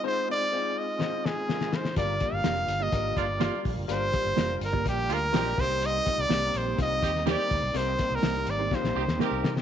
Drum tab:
HH |----------------|x-x-xxx-x-x-x-o-|x-x-x-x-x-x-x-ox|x-x-x-x-x-x-x-o-|
SD |--------o-o-oooo|----o-------o---|----o-------o-o-|----o------oo---|
BD |----------------|o-o-----o-o---o-|--o----oo-----o-|--o-----o-o---o-|

HH |x-x-xxx---------|
SD |----o---oo-oo-oo|
BD |--o-----o-------|